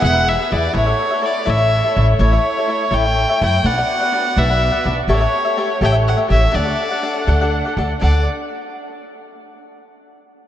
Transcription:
Already playing: violin section B3 E4 G#4
0.00 upright bass E1, cavaquinho E4 G#4 B4 E5, violin F#5
0.14 cavaquinho G#4 B4 E5
0.29 violin E5
0.39 cavaquinho G#4 B4 E5
0.50 upright bass E2, cavaquinho E4 G#4 B4 E5, violin D5
0.73 upright bass A1, violin section A3 C#5, cavaquinho E4 A4 C#5 E5, violin C#5
0.86 cavaquinho A4 C#5 E5
1.11 cavaquinho A4 C#5 E5
1.22 cavaquinho E4 A4 C#5 E5
1.26 violin D5
1.45 upright bass A1, cavaquinho E4 A4 C#5 E5
1.50 violin E5
1.58 cavaquinho A4 C#5 E5
1.84 cavaquinho A4 C#5 E5
1.96 upright bass A1, cavaquinho E4 A4 C#5 E5
2.19 upright bass A1, cavaquinho E4 A4 C#5 E5, violin C#5
2.33 cavaquinho A4 C#5 E5
2.57 cavaquinho A4 C#5 E5
2.68 cavaquinho E4 A4 C#5 E5
2.91 upright bass A1, cavaquinho E4 A4 C#5 E5, violin G5
3.05 cavaquinho A4 C#5 E5
3.29 cavaquinho A4 C#5 E5
3.41 upright bass F#2, cavaquinho E4 A4 C#5 E5, violin G5
3.64 upright bass B1, violin section B3 F#4 D5, cavaquinho D4 B4 D5 F#5, violin F#5
3.78 cavaquinho B4 D5 F#5
4.01 cavaquinho B4 D5 F#5
4.12 cavaquinho D4 B4 D5 F#5
4.36 upright bass B1, cavaquinho D4 B4 D5 F#5, violin E5
4.50 cavaquinho B4 D5 F#5
4.72 cavaquinho B4 D5 F#5
4.84 upright bass B1, cavaquinho D4 B4 D5 F#5
5.08 upright bass A1, violin section A3 G4 C#5, cavaquinho G4 A4 C#5 E5, violin C#5
5.20 cavaquinho A4 C#5 E5
5.45 cavaquinho A4 C#5 E5
5.57 cavaquinho G4 A4 C#5 E5
5.81 upright bass A1, cavaquinho G4 A4 C#5 E5, violin G5
5.92 cavaquinho A4 C#5 E5
6.08 violin F#5
6.17 cavaquinho A4 C#5 E5
6.28 upright bass A1, cavaquinho G4 A4 C#5 E5, violin E5
6.52 upright bass D2, cavaquinho D4 A4 D5 F#5, violin section D4 A4 F#5, violin D5
6.65 cavaquinho A4 D5 F#5
6.91 cavaquinho A4 D5 F#5
7.03 cavaquinho D4 A4 D5 F#5
7.27 upright bass D2, cavaquinho D4 A4 D5 F#5
7.41 cavaquinho A4 D5 F#5
7.65 cavaquinho A4 D5 F#5
7.77 upright bass D2, cavaquinho D4 A4 D5 F#5
7.99 upright bass D2, violin section D4 A4 F#5, cavaquinho D4 A4 D5 F#5, violin D5

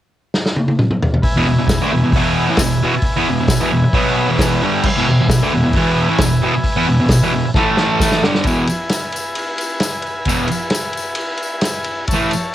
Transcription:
0.34 snare
0.46 snare
0.56 high tom
0.68 high tom
0.79 mid tom
0.91 mid tom
1.02 floor tom
1.14 floor tom
1.22 transistor combo organ B4 E5 G#5, kick, open hi-hat
1.36 distorted electric guitar E2 B2
1.47 distorted electric guitar E2 B2
1.58 distorted electric guitar E2 B2
1.68 kick, snare, open hi-hat, tambourine
1.81 distorted electric guitar D3 A3
1.93 distorted electric guitar E2 B2
2.04 distorted electric guitar E2 B2
2.12 distorted electric guitar E2 B2 E3, kick, open hi-hat
2.49 distorted electric guitar A2 E3
2.57 distorted electric guitar E2, kick, snare, open hi-hat, tambourine
2.61 distorted electric guitar B2
2.83 distorted electric guitar E2 B2
2.95 muted distorted electric guitar stroke
3.02 kick, open hi-hat
3.17 distorted electric guitar E3 B3
3.29 distorted electric guitar E2 B2
3.40 distorted electric guitar E2 B2
3.48 kick, snare, open hi-hat, tambourine
3.61 distorted electric guitar E2 B2
3.73 distorted electric guitar E2 B2
3.84 muted distorted electric guitar stroke
3.93 distorted electric guitar B2 F#3 B3, kick, open hi-hat
4.15 transistor combo organ B5
4.28 distorted electric guitar E2 B2 E3
4.38 transistor combo organ G#5, kick, snare, open hi-hat, tambourine
4.61 distorted electric guitar G2 D3 G3, transistor combo organ G#5
4.82 transistor combo organ B4 E5 G#5, kick, crash
4.97 distorted electric guitar E2 B2
5.09 distorted electric guitar E2 B2
5.21 distorted electric guitar E2 B2
5.29 kick, snare, open hi-hat, tambourine
5.42 distorted electric guitar D3 A3
5.53 distorted electric guitar E2 B2
5.64 distorted electric guitar E2 B2
5.73 distorted electric guitar E2 B2 E3, kick, open hi-hat
6.09 distorted electric guitar A2 E3
6.18 distorted electric guitar E2 B2, kick, snare, open hi-hat, tambourine
6.42 distorted electric guitar E2 B2
6.55 muted distorted electric guitar stroke
6.64 kick, open hi-hat
6.76 distorted electric guitar E3 B3
6.89 distorted electric guitar E2 B2
7.00 distorted electric guitar E2 B2
7.09 kick, snare, open hi-hat, tambourine
7.23 distorted electric guitar E2 B2
7.34 distorted electric guitar E2 B2
7.45 muted distorted electric guitar stroke
7.54 distorted electric guitar A2 E3 A3, transistor combo organ A4 E5 A5, kick, snare
7.77 snare
8.00 kick, snare, tambourine
8.12 snare
8.22 distorted electric guitar G2 D3 G3, snare
8.35 snare
8.44 distorted electric guitar E2 B2, transistor combo organ B4 E5 G#5, kick, ride, tambourine
8.48 distorted electric guitar E3
8.67 ride, tambourine
8.89 snare, ride, tambourine
9.12 ride, tambourine
9.35 ride, tambourine
9.58 ride, tambourine
9.80 snare, ride, tambourine
10.02 ride
10.07 tambourine
10.25 distorted electric guitar E2 B2 E3, kick, ride, tambourine
10.48 ride, tambourine
10.70 snare, ride
10.75 tambourine
10.93 ride
10.97 tambourine
11.15 ride
11.20 tambourine
11.37 ride
11.43 tambourine
11.61 snare, ride, tambourine
11.84 ride, tambourine
12.08 transistor combo organ C#5 E5 A5, kick, ride, tambourine
12.12 distorted electric guitar A2 E3 A3
12.31 ride, tambourine

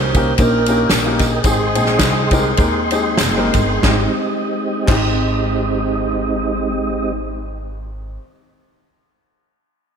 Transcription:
Already playing: upright bass C2, grand piano D#3, saxophone section C#4 G4 C5, tonewheel organ A#4 D#5 G5
0.14 grand piano A#3 C#4 D#4 G4 A#4, kick, ride bell, tambourine
0.38 upright bass A#1, grand piano A#3 C#4 D#4 G4 C5, saxophone section C#4 G4 A#4, kick, ride bell, tambourine
0.66 grand piano A#3 C#4 D#4 G4 A#4, ride bell, tambourine
0.90 upright bass A#1, snare, clap, ride bell, tambourine
1.05 grand piano A#3 C#4 D#4 G4 A#4
1.19 saxophone section C4 D#4 G#4, kick, snare, ride bell, tambourine
1.44 upright bass G#1, grand piano G#2 G#3 C4 D#4 G4 G#4, tonewheel organ G#4 C6, kick, ride bell, tambourine
1.75 upright bass A#1, grand piano G#3 C4 D#4 G#4 G5, ride bell, tambourine
1.86 snare
1.99 upright bass C2, kick, snare, clap, ride bell, tambourine
2.31 grand piano G#3 C4 D#4 G4 A#4, kick, ride bell, tambourine
2.57 upright bass D#2, grand piano G#3 C4 D#4 G4 A#4, kick, ride bell, tambourine
2.91 grand piano G#3 C4 D#4 G4 G#4, ride bell, tambourine
3.18 upright bass F#1, snare, clap, ride bell, tambourine
3.37 grand piano G#3 C4 D#4 G4 A#4
3.54 upright bass G1, kick, ride bell, tambourine
3.82 upright bass G#1, grand piano G#1 G#3 C4, tonewheel organ G#3 C4 D#4 G4 D#5, kick, snare, clap
3.86 grand piano D#4 G4
4.86 upright bass G#1, grand piano G#1 G#3 C4, kick, clap, crash
4.90 grand piano D#4 G4

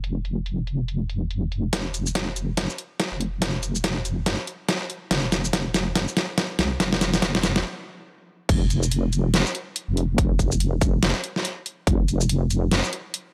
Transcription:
Already playing: wobble bass F1
0.04 closed hi-hat
0.25 closed hi-hat
0.46 closed hi-hat
0.67 closed hi-hat
0.88 closed hi-hat
1.10 closed hi-hat
1.31 closed hi-hat
1.52 closed hi-hat
1.73 wobble bass F1, kick, snare, closed hi-hat
1.94 closed hi-hat, shaker
2.06 shaker
2.15 kick, snare, closed hi-hat
2.36 closed hi-hat, shaker
2.57 kick, snare, closed hi-hat
2.70 shaker
2.78 closed hi-hat
3.00 kick, snare, closed hi-hat
3.12 wobble bass F1
3.21 closed hi-hat
3.42 wobble bass F1, kick, snare, closed hi-hat
3.63 closed hi-hat, shaker
3.75 shaker
3.84 kick, snare, closed hi-hat
4.05 closed hi-hat, shaker
4.26 kick, snare, closed hi-hat
4.47 closed hi-hat
4.69 kick, snare, closed hi-hat
4.90 closed hi-hat
5.11 wobble bass F1, kick, snare, closed hi-hat
5.32 snare, closed hi-hat, shaker
5.45 shaker
5.53 kick, snare, closed hi-hat
5.74 snare, closed hi-hat, shaker
5.95 kick, snare, closed hi-hat
6.08 shaker
6.17 snare, closed hi-hat
6.38 kick, snare, closed hi-hat
6.59 wobble bass C2, snare, closed hi-hat
6.80 wobble bass F1, kick, snare, closed hi-hat
6.93 snare
7.01 snare, closed hi-hat, shaker
7.14 snare, shaker
7.22 kick, snare, closed hi-hat
7.35 snare
7.43 snare, closed hi-hat, shaker
7.56 snare
8.49 wobble bass F1, kick, closed hi-hat, crash
8.70 closed hi-hat, shaker
8.83 shaker
8.91 closed hi-hat
9.13 closed hi-hat, shaker
9.34 snare, closed hi-hat
9.46 shaker
9.55 closed hi-hat
9.76 closed hi-hat
9.88 wobble bass F1
9.97 closed hi-hat
10.18 wobble bass F1, kick, closed hi-hat
10.39 kick, closed hi-hat, shaker
10.52 shaker
10.60 closed hi-hat
10.81 kick, closed hi-hat, shaker
11.03 snare, closed hi-hat
11.24 closed hi-hat
11.36 snare
11.45 closed hi-hat
11.66 closed hi-hat
11.87 wobble bass F1, kick, closed hi-hat
12.08 closed hi-hat, shaker
12.21 shaker
12.29 closed hi-hat
12.51 closed hi-hat, shaker
12.71 snare, closed hi-hat
12.84 shaker
12.93 closed hi-hat
13.14 closed hi-hat

